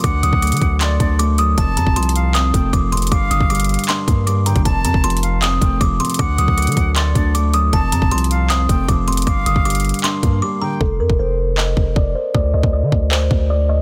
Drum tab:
HH |x-----------x-----------x--x--x--x--x-----------x-----------x-----------x-----------x-----------|x-----------x-----------x---x---x---x-----------x-----------x-----------x-----------x--x--x--x--|x-----------x-----------x--x--x--x--x--x--x--x--x-----------x-----------x-----------x-----x-----|x-----------x-----------x---x---x---x-----------x-----------x-----------x-----------x--x--x--x--|
CP |------------------------------------------------x-----------------------------------------------|------------------------------------------------x-----------------------------------------------|------------------------------------------------x-----------------------------------------------|------------------------------------------------x-----------------------------------------------|
BD |o-----------------o-----------------o-----------------------o-----------------------------------|o-----------------o-----------------------------------------o-----------o-----------------------|o-----------------o-----------------------------------------o-----------------------------o-----|o-----------------o-----------------------------------------o-----------o-----------------------|

HH |x-----------x-----------x--x--x--x--x-----------x-----------x-----------x-----------x-----------|x-----------x-----------x---x---x---x-----------x-----------x-----------x-----------x--x--x--x--|x-----------x-----------x--x--x--x--x--x--x--x--x-----------x-----------------------------------|------------------------------------------------------------------------------------------------|
CP |------------------------------------------------x-----------------------------------------------|------------------------------------------------x-----------------------------------------------|------------------------------------------------x-----------------------------------------------|------------------------------------------------x-----------------------------------------------|
BD |o-----------------o-----------------o-----------------------o-----------------------------------|o-----------------o-----------------------------------------o-----------o-----------------------|o-----------------o-----------------------------------------o-----------------------------------|o-----------------o-----------------------------------------o-----------o-----------------------|

HH |------------------------------------------------------------------------------------------------|
CP |------------------------------------------------x-----------------------------------------------|
BD |o-----------------o-----------------o-----------------------o-----------------------------------|